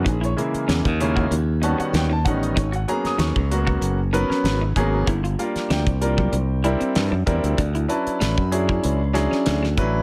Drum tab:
HH |xxxxxxx-x-xxx-xx|xxxxx-x-x-x-x-x-|xxxxxxx-x-xxx-xx|xxxxx-x-x-x-x-x-|
SD |----o-------o---|---oo------oo---|---oo-------o---|----o-----oooo--|
BD |o----o-o------o-|o----o-o------o-|o----o-o------o-|o----o-o------o-|